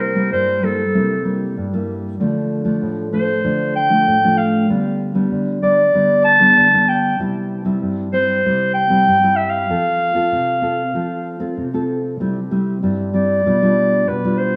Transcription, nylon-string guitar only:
Already playing: C3 G3 A#3 E4
0.15 G3 A#3 E4
0.32 G2
0.63 G3 A#3 E4
0.94 C3 G3 A#3 E4
1.24 G3 A#3 E4
1.57 G2
1.73 G3 A#3 E4
2.20 D3 F3 A3 D4
2.65 F3 A3 D4
2.82 A2
3.13 F3 A3 D4
3.44 D3 F3 A3 D4
3.89 F3 A3 D4
4.07 A2
4.24 F3 A3 D4
4.69 D3 G3 B3 D4
5.15 G3 B3 D4
5.32 D3
5.62 G3 B3 D4
5.94 D3 G3 B3 D4
6.40 G3 B3 D4
6.57 D3
6.73 G3 B3 D4
7.19 C3 G3 C4 E4
7.65 G3 C4 E4
7.82 G2
8.13 G3 C4 E4
8.46 C3 G3 C4 E4
8.90 G3 C4 E4
9.07 G2
9.23 G3 C4 E4
9.70 F3 C4 F4 A4
10.14 C4 F4 A4
10.32 C3
10.62 C4 F4 A4
10.94 F3 C4 F4 A4
11.40 C4 F4 A4
11.57 C3
11.74 C4 F4 A4
12.20 C3 G3 C4 E4
12.51 G3 C4 E4
12.83 G2 G3 C4 E4
13.13 G3 C4 E4
13.46 B2 G3 D4 F4
13.62 G3 D4 F4
14.08 B2
14.24 G3 D4 F4

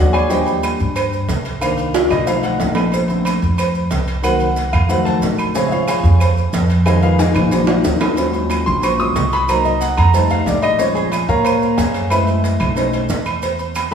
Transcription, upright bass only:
0.00 D#2
0.80 G2
1.29 C2
2.11 B1
2.60 A#1
3.42 F2
3.92 C2
4.73 F2
5.22 A#1
6.04 F2
6.53 F2
7.36 A#1
7.85 D#2
8.67 A#1
9.16 C2
9.98 F2
10.47 A#1
11.29 A#2
11.78 F#2
12.61 B1
13.10 E2

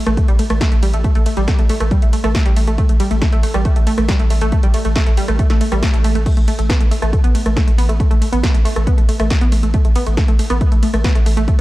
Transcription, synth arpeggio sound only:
0.07 A3
0.17 A3
0.28 G3
0.39 A3
0.50 A3
0.61 A3
0.72 A3
0.83 G3
0.94 A3
1.04 A3
1.15 A3
1.26 A3
1.37 G3
1.48 A3
1.59 A3
1.70 A3
1.81 A3
1.91 G3
2.02 A3
2.13 A3
2.24 A3
2.35 A3
2.46 G3
2.57 A3
2.68 A3
2.78 A3
2.89 A3
3.00 G3
3.11 A3
3.22 A3
3.33 A3
3.43 A3
3.54 G3
3.65 A3
3.76 A3
3.87 A3
3.98 A3
4.09 G3
4.20 A3
4.30 A3
4.41 A3
4.52 A3
4.63 G3
4.74 A3
4.85 A3
4.96 A3
5.07 A3
5.18 G3
5.29 A3
5.39 A3
5.50 A3
5.61 A3
5.72 G3
5.83 A3
5.94 A3
6.05 A3
6.15 A3
6.26 A3
6.37 A3
6.48 A3
6.59 A3
6.70 B3
6.81 A3
6.91 A3
7.02 A3
7.13 A3
7.24 B3
7.35 A3
7.46 A3
7.56 A3
7.67 A3
7.78 B3
7.89 A3
8.00 A3
8.11 A3
8.22 A3
8.33 B3
8.43 A3
8.54 A3
8.65 A3
8.76 A3
8.87 B3
8.98 A3
9.09 A3
9.20 A3
9.31 A3
9.41 B3
9.52 A3
9.63 A3
9.74 A3
9.85 A3
9.96 B3
10.07 A3
10.17 A3
10.28 A3
10.39 A3
10.50 B3
10.61 A3
10.72 A3
10.83 A3
10.94 A3
11.05 B3
11.15 A3
11.26 A3
11.37 A3
11.48 A3

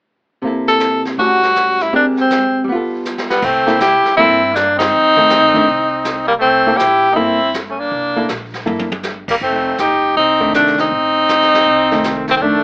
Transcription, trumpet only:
3.30 G3
3.41 A3
3.78 E4
4.15 C4
4.52 A#3
4.76 C4
6.27 G3
6.39 A3
6.76 E4
7.10 A#3
7.15 C4
7.69 A3
7.77 A#3
9.29 G3
9.43 A3
9.80 D#4
10.18 C4
10.55 A3
10.78 C4
12.28 A3
12.36 A3
12.42 A3

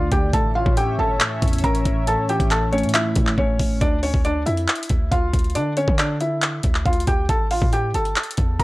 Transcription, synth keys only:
Already playing: D3 A3 D4 D5
0.12 D3
0.34 A2
0.55 E3
0.77 A2
1.20 A2
1.42 E3
1.64 C#4
1.86 A2
2.07 A2
2.29 E3
2.50 A2
2.72 A3
3.16 E3
3.38 C#4
3.60 A2

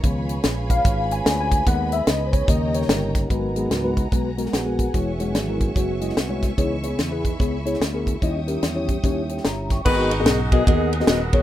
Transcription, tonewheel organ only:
Already playing: C#4
0.04 G#3 F4 B4
1.67 G#3 B3 D#4 B4
2.48 G3 C#4 A#4
3.30 F#3 B3 D#4 F#4 A#4 B4
4.53 B3 F#4 G#4
5.19 F#3 G#3 C#4
5.77 B3 C#4 F#4
6.02 F#3 G#3 C#4
6.58 E3 B3 D#4
7.24 E3 B3 D#4
8.21 G3 C#4 E4
9.85 G#4 D#5 F#5 A#5

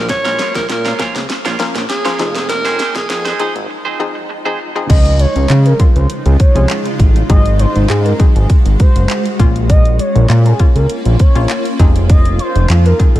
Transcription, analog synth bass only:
Already playing: A#1
0.55 A#1
0.70 A#2
1.15 C#2
1.45 A#1
1.76 A#1
2.20 F1
2.95 F1
3.10 F2
3.56 G#1
4.90 C#2
5.36 C#2
5.50 C#3
5.96 C#2
6.26 C#2
6.55 C2
6.99 A1
7.30 G#1
7.76 G#1
7.90 G#2
8.36 G#1
8.65 G#1
8.96 F#1
9.39 A#1
10.15 A#1
10.29 A#2
10.75 C#2
11.06 A#1
11.36 A#1
11.79 F1
12.56 F1
12.70 F2
13.15 G#1

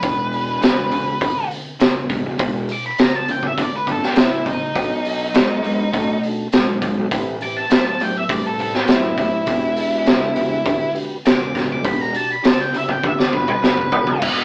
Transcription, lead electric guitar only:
Already playing: B4
2.72 D6
2.86 B5
3.01 A#5
3.15 A5
3.31 G5
3.47 E5
3.62 D5
3.76 B4
3.91 A4
4.05 G4
4.18 E4
4.46 D#4
7.43 D6
7.57 A5
7.73 A5
7.88 A5
8.04 G5
8.17 E5
8.32 D5
8.47 A4
8.61 A4
8.75 G4
8.89 E4
9.19 E4
11.26 D6
11.72 D6
11.85 B5
12.01 A#5
12.16 A5
12.32 B5
12.47 A5
12.61 G5
12.77 E5
12.91 G5
13.06 E5
13.19 D5
13.34 B4
13.65 B4

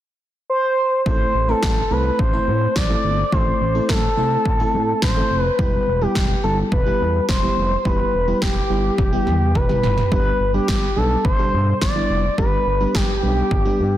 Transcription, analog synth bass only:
1.06 A1
1.34 A1
1.63 A1
1.91 C2
2.19 A1
2.47 A2
2.76 A1
3.04 G1
3.32 A1
3.61 A1
3.89 A1
4.17 C2
4.45 A1
4.74 A2
5.02 A1
5.31 F1
5.59 E1
5.87 E1
6.16 E1
6.44 G1
6.72 E1
7.00 E2
7.29 E1
7.57 F1
7.85 E1
8.14 E1
8.42 E1
8.70 G1
8.98 E1
9.27 E2
9.55 E1
9.83 F1
10.12 G1
10.40 G1
10.69 G1
10.97 B1
11.25 G1
11.53 G2
11.82 G1
12.10 F1
12.38 G1
12.66 G1
12.95 G1
13.23 B1
13.51 G1
13.80 G2

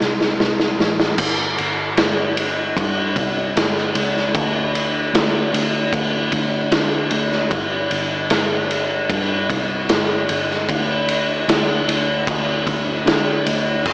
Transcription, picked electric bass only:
0.01 C2
0.41 C2
0.79 A1
1.18 G1
1.59 G1
1.97 G1
2.76 G2
3.16 C2
3.56 G1
3.95 C#2
4.34 D2
5.14 D2
5.54 D2
5.93 D2
6.32 D2
6.71 D3
7.11 D2
7.51 G1
7.91 G1
8.31 G1
9.10 G2
9.50 C2
9.90 G1
10.30 G1
10.69 D2
11.48 D2
11.88 D2
12.28 D2
12.67 D2
13.06 D3
13.47 D2
13.86 G1

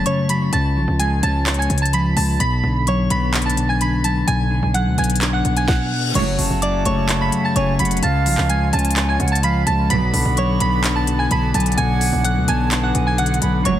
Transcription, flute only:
6.39 A5
7.56 G#5
7.79 F#5
8.03 F5
8.73 G#5
9.20 F#5
9.43 F5
9.67 A5
10.14 B5
11.31 A5
11.54 G#5
11.78 F#5
12.48 A5
12.95 G#5
13.18 F#5
13.42 B5

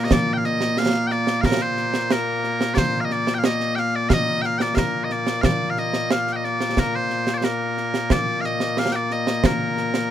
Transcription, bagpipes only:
Already playing: A#2 A#3
0.04 D#5
0.12 D5
0.33 G5
0.38 F5
0.45 D#5
0.78 F5
1.07 G5
1.12 D5
1.41 F5
1.45 A#4
1.62 C5
2.12 A#4
2.74 C5 D5
3.01 F5
3.05 D#5
3.13 D5
3.34 G5
3.39 F5
3.45 D#5
3.76 F5 G5
3.96 D5
4.09 F5
4.13 D#5
4.42 F5 G5
4.58 D5 G5
4.75 A#4 F5
5.04 D#5
5.12 D5
5.41 D5 F5
5.70 F5
5.79 D#5
6.11 F5
6.33 D#5 G5
6.45 D5
6.79 A#4
6.96 C5
7.34 C5 D5
7.44 A#4
8.12 D5
8.41 F5
8.45 D#5
8.79 F5
8.93 D5 G5
9.12 D#5
9.46 A#4

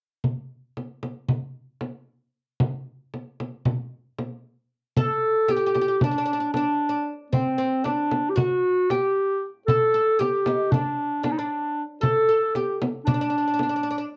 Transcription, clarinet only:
4.99 A4
5.52 G4
6.03 D4
6.53 D4
7.32 C4
7.85 D4
8.30 G4
8.37 F#4
8.90 G4
9.67 A4
10.20 G4
10.72 D4
11.25 D4
11.31 D#4
11.38 D4
12.02 A4
12.55 G4
13.05 D4

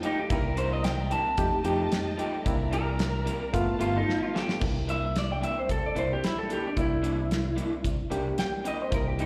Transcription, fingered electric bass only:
0.30 C2
1.38 F2
1.64 F2
2.46 C2
3.54 G1
3.80 G1
4.61 C2
5.69 C2
5.96 C2
6.76 C2
7.84 C2
8.11 C2
8.92 C2

